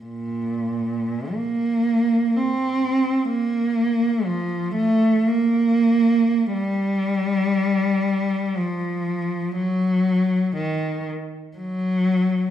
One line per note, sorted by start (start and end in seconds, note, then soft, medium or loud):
0.03 1.32 A#2 soft
1.34 2.36 A#3 soft
2.36 3.30 C4 medium
3.30 4.24 A#3 medium
4.25 4.75 F3 medium
4.75 5.24 A3 medium
5.27 6.53 A#3 medium
6.53 8.54 G3 medium
8.57 9.56 F3 soft
9.56 10.54 F#3 medium
10.56 11.06 D#3 soft
11.57 12.51 F#3 soft